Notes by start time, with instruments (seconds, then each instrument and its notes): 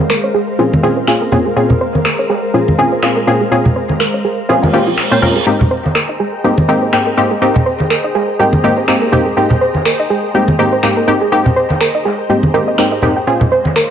Already playing: string machine G#3 A#4 C5 F5 A#5
0.10 synth arpeggio sound A#4, finger snap
0.24 synth arpeggio sound C#5
0.34 synth arpeggio sound G#4, snare, closed hi-hat
0.59 synth stab A#2 C4 C#4 F4 G#4, synth arpeggio sound F4, closed hi-hat
0.73 high conga
0.83 synth stab A#2 C4 C#4 F4 G#4
0.97 synth arpeggio sound C5
1.07 synth stab A#2 C4 C#4 F4 G#4, finger snap
1.21 synth arpeggio sound A#4
1.32 synth stab A#2 C4 C#4 F4 G#4, low conga
1.46 synth arpeggio sound G#4
1.56 synth stab A#2 C4 C#4 F4 G#4, string machine A#5, closed hi-hat
1.70 low conga
1.81 synth arpeggio sound C5, closed hi-hat
1.95 snare, high conga
2.05 synth arpeggio sound A#4, finger snap, closed hi-hat
2.19 synth arpeggio sound C#5
2.30 synth arpeggio sound G#4, snare, closed hi-hat
2.54 synth stab A#2 C4 C#4 F4 G#4, synth arpeggio sound F4, closed hi-hat
2.68 high conga
2.78 synth stab A#2 C4 C#4 F4 G#4
2.92 synth arpeggio sound C5
3.02 synth stab A#2 C4 C#4 F4 G#4, finger snap
3.16 synth arpeggio sound A#4
3.27 synth stab A#2 C4 C#4 F4 G#4, closed hi-hat
3.41 synth arpeggio sound G#4
3.51 synth stab A#2 C4 C#4 F4 G#4, closed hi-hat
3.65 low conga
3.76 synth arpeggio sound C5, closed hi-hat
3.90 snare, high conga
4.00 synth arpeggio sound A#4, finger snap
4.14 synth arpeggio sound C#5
4.25 synth arpeggio sound G#4, closed hi-hat
4.49 synth stab A#2 C4 C#4 F4 G#4, synth arpeggio sound F4, snare, reverse cymbal
4.63 snare, closed hi-hat, high conga
4.73 synth stab A#2 C4 C#4 F4 G4, snare
4.87 synth arpeggio sound F4
4.98 finger snap, snare
5.11 synth stab A#2 C4 C#4 F4 C5, synth arpeggio sound F5
5.22 synth stab A#2 C4 C#4 F4 A#4, snare, closed hi-hat, low conga
5.36 synth arpeggio sound G#4
5.46 synth stab G#2 A#3 C4 D#4 G4, string machine G#4 C5 D#5 G5 A#5, closed hi-hat
5.61 low conga
5.71 synth arpeggio sound C5, closed hi-hat
5.85 snare, high conga
5.95 synth arpeggio sound A#4, finger snap
6.09 synth arpeggio sound D#5
6.20 synth arpeggio sound G#4, closed hi-hat
6.44 synth stab G#2 A#3 C4 D#4 G4, synth arpeggio sound G4, closed hi-hat
6.58 high conga
6.68 synth stab G#2 A#3 C4 D#4 G4
6.82 synth arpeggio sound C5
6.93 synth stab G#2 A#3 C4 D#4 G4, finger snap
7.07 synth arpeggio sound A#4
7.17 synth stab G#2 A#3 C4 D#4 G4
7.31 synth arpeggio sound G#4
7.42 synth stab G#2 A#3 C4 D#4 G4
7.56 low conga
7.66 synth arpeggio sound C5, closed hi-hat
7.80 snare, high conga
7.90 synth arpeggio sound A#4, finger snap
8.04 synth arpeggio sound D#5
8.14 synth arpeggio sound G#4, snare, closed hi-hat
8.39 synth stab G#2 A#3 C4 D#4 G4, synth arpeggio sound G4, closed hi-hat
8.53 high conga
8.63 synth stab G#2 A#3 C4 D#4 G4
8.77 synth arpeggio sound C5
8.88 synth stab G#2 A#3 C4 D#4 G4, finger snap
9.02 synth arpeggio sound A#4
9.12 synth stab G#2 A#3 C4 D#4 G4, closed hi-hat, low conga
9.26 synth arpeggio sound G#4
9.37 synth stab G#2 A#3 C4 D#4 G4, closed hi-hat
9.50 closed hi-hat, low conga
9.61 synth arpeggio sound C5, closed hi-hat
9.75 snare, high conga
9.85 synth arpeggio sound A#4, finger snap
9.99 synth arpeggio sound D#5
10.10 synth arpeggio sound G#4, closed hi-hat
10.34 synth stab G#2 A#3 C4 D#4 G4, synth arpeggio sound G4, closed hi-hat
10.48 high conga
10.59 synth stab G#2 A#3 C4 D#4 G4
10.73 synth arpeggio sound C5
10.83 synth stab G#2 A#3 C4 D#4 G4, finger snap
10.97 synth arpeggio sound A#4
11.07 synth stab G#2 A#3 C4 D#4 G4
11.21 synth arpeggio sound G#4
11.32 synth stab G#2 A#3 C4 D#4 G4, closed hi-hat
11.46 low conga
11.56 synth arpeggio sound C5, closed hi-hat
11.70 snare, high conga
11.80 synth arpeggio sound A#4, finger snap
11.95 synth arpeggio sound D#5
12.05 synth arpeggio sound G#4, snare, closed hi-hat
12.29 synth stab G#2 A#3 C4 D#4 G4, synth arpeggio sound G4, closed hi-hat
12.43 high conga
12.54 synth stab G#2 A#3 C4 D#4 G4, synth arpeggio sound A#4, closed hi-hat
12.68 synth arpeggio sound D#5
12.78 synth stab G#2 A#3 C4 D#4 G4, finger snap, snare
12.92 synth arpeggio sound D#5
13.02 synth stab G#2 A#3 C4 D#4 G4, snare, closed hi-hat, low conga
13.16 synth arpeggio sound G5
13.27 synth stab A#2 C4 C#4 F4 G#4, string machine G#3 C#5 F5 A#5, closed hi-hat
13.41 closed hi-hat, low conga
13.52 synth arpeggio sound C5, closed hi-hat
13.65 snare, high conga
13.76 synth arpeggio sound A#4, finger snap, closed hi-hat